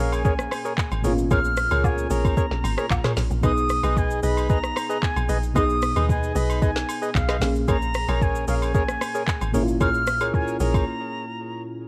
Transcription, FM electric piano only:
0.00 1.00 A#2 medium
0.00 1.00 A#3 medium
0.00 1.01 C#4 medium
0.00 1.02 G#4 medium
1.02 3.12 A#2 medium
1.02 3.13 A#3 medium
1.02 1.12 B3 medium
1.07 3.14 F4 medium
1.12 3.17 C#4 medium
3.41 5.51 B2 medium
3.41 5.52 B3 medium
3.41 5.52 D#4 medium
3.46 5.53 G#4 medium
5.54 7.37 B2 medium
5.54 7.38 B3 medium
5.54 7.38 D#4 medium
5.58 7.39 G#4 medium
7.40 9.49 A#2 medium
7.40 9.50 A#3 medium
7.40 9.51 C#4 medium
7.44 9.51 G#4 medium
9.52 11.61 A#2 medium
9.52 11.62 A#3 medium
9.52 11.63 C#4 medium
9.57 9.62 E4 medium
9.63 11.67 F4 medium

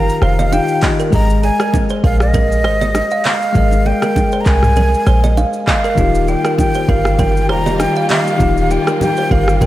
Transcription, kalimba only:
0.22 0.33 C5 medium
0.39 0.47 D#5 medium
0.53 0.63 F5 medium
0.83 0.93 D#5 medium
1.00 1.08 A#4 medium
1.44 1.54 G#4 medium
1.60 1.69 A#4 medium
1.90 1.99 C5 medium
2.04 2.14 A#4 medium
2.34 2.45 A#4 medium
2.65 2.75 C5 medium
2.81 2.90 D#5 medium
3.12 3.20 F5 medium
3.25 3.35 D#5 medium
3.86 3.96 G#4 medium
4.03 4.11 A#4 medium
4.33 4.41 C5 medium
4.46 4.57 A#4 medium
4.77 4.87 A#4 medium
5.07 5.17 C5 medium
5.24 5.32 D#5 medium
5.37 5.48 F5 medium
5.68 5.78 D#5 medium
5.84 5.93 A#4 medium
6.28 6.39 G4 medium
6.45 6.53 A#4 medium
6.75 6.84 C5 medium
6.89 6.99 A#4 medium
7.19 7.29 A#4 medium
7.49 7.60 C5 medium
7.66 7.75 D#5 medium
7.97 8.05 F5 medium
8.10 8.20 D#5 medium
8.71 8.81 G4 medium
8.88 8.96 A#4 medium
9.18 9.26 C5 medium
9.32 9.42 A#4 medium
9.62 9.66 A#4 medium

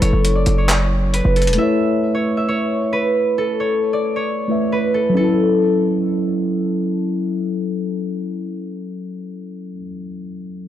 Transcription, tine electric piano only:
0.00 1.53 F#3 medium
0.00 1.54 C#4 medium
0.00 1.55 E4 medium
0.00 1.56 A4 medium
1.55 4.44 A3 medium
1.55 4.45 E4 medium
1.60 4.46 B4 medium
1.60 4.48 C#5 medium
4.48 5.16 A3 medium
4.48 5.16 E4 soft
4.48 5.17 B4 soft
4.48 5.18 E5 medium
5.09 9.69 F#3 medium
5.14 9.74 C#4 medium
5.19 9.79 E4 medium
5.24 9.83 A4 medium

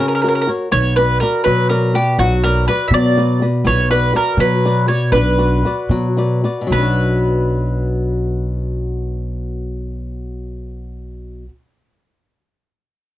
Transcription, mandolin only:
0.08 0.14 A#4 medium
0.15 0.20 A#4 medium
0.22 0.27 A#4 medium
0.28 0.34 A#4 medium
0.35 0.40 A#4 medium
0.41 0.49 A#4 medium
0.72 0.96 C#5 loud
0.96 1.20 B4 loud
1.20 1.44 A#4 medium
1.44 1.68 B4 medium
1.69 1.93 A#4 medium
1.95 2.17 G4 medium
2.19 2.42 F#4 medium
2.44 2.66 A#4 loud
2.68 2.86 B4 medium
2.88 2.93 E5 medium
2.94 3.44 D5 loud
3.67 3.89 C#5 loud
3.91 4.12 B4 medium
4.16 4.37 A#4 medium
4.40 4.88 B4 loud
4.88 5.10 C#5 medium
5.12 6.40 B4 loud
6.72 11.48 B4 medium

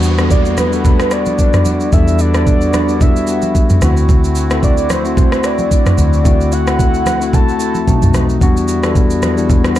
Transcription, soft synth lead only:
0.31 0.45 D5 medium
0.46 0.59 D5 medium
0.58 0.84 B4 medium
0.85 1.10 B4 medium
1.12 1.89 D5 loud
1.93 2.22 E5 loud
2.21 3.03 D5 loud
3.02 3.82 E5 loud
4.64 4.77 D5 medium
4.79 4.93 D5 medium
4.91 5.17 C5 medium
5.18 5.46 C5 medium
5.45 6.25 D5 loud
6.26 6.54 D5 loud
6.53 7.35 F#5 loud
7.34 8.15 A5 loud

